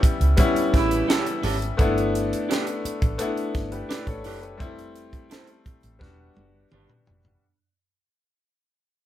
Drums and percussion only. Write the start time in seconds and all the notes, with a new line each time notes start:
0.03 kick, closed hi-hat
0.21 closed hi-hat
0.37 kick, closed hi-hat
0.56 closed hi-hat
0.74 kick, snare, closed hi-hat
0.91 closed hi-hat
1.10 snare, closed hi-hat
1.27 closed hi-hat
1.43 open hi-hat
1.62 closed hi-hat
1.79 kick, closed hi-hat
1.98 closed hi-hat
2.15 closed hi-hat
2.33 closed hi-hat
2.51 snare, closed hi-hat
2.67 closed hi-hat
2.85 closed hi-hat
3.02 kick, closed hi-hat
3.19 closed hi-hat
3.37 closed hi-hat
3.55 kick, snare, closed hi-hat
3.72 closed hi-hat
3.91 snare, closed hi-hat
4.07 kick, closed hi-hat
4.24 open hi-hat
4.43 closed hi-hat
4.60 kick, closed hi-hat
4.79 closed hi-hat
4.96 closed hi-hat
5.13 kick, closed hi-hat
5.31 snare, closed hi-hat
5.47 closed hi-hat
5.66 kick, closed hi-hat
5.83 closed hi-hat
6.01 kick, snare
6.37 high tom
6.72 mid tom
6.90 mid tom
7.07 floor tom
7.25 floor tom